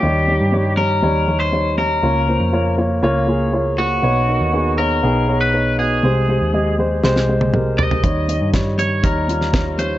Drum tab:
HH |----------------|----------------|----------------|----------------|
SD |----------------|----------------|----------------|--------oo------|
T1 |----------------|----------------|----------------|-----------o----|
T2 |----------------|----------------|----------------|------------o---|
FT |----------------|----------------|----------------|--------------oo|
BD |----------------|----------------|----------------|----------------|

HH |x-x-x-x-x-x-x-x-|
SD |----o------oo---|
T1 |----------------|
T2 |----------------|
FT |----------------|
BD |o---o---o---o---|